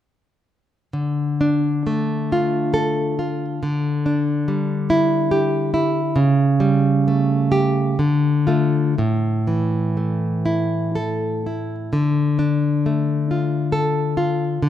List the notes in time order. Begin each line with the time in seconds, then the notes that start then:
0.93 D3
1.41 D4
1.87 A3
2.32 F4
2.74 A4
3.19 F4
3.63 D3
4.06 D4
4.48 G3
4.90 E4
5.31 G4
5.74 E4
6.16 C#3
6.60 G3
7.08 A3
7.52 G4
7.99 D3
8.47 A3 F4
8.98 A2
9.47 E3
9.97 A3
10.46 E4
10.95 A4
11.46 E4
11.93 D3
12.39 D4
12.86 A3
13.31 F4
13.72 A4
14.17 F4
14.63 D3